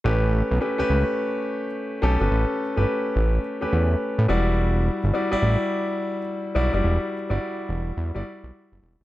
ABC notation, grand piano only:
X:1
M:4/4
L:1/16
Q:"Swing 16ths" 1/4=106
K:Amix
V:1 name="Grand piano"
[A,CGB]3 z [A,CGB] [A,CGB]6 z3 [A,CGA] [A,CGB]- | [A,CGB]2 z [A,CGB]4- [A,CGB] z [A,CGB]4- [A,CGB] [G,EFd]2- | [G,EFd]3 z [G,EFd] [G,EFd]6 z3 [G,EFd] [G,EFd]- | [G,EFd]2 z [G,EFd]4- [G,EFd] z [G,EFd]4- [G,EFd] z2 |]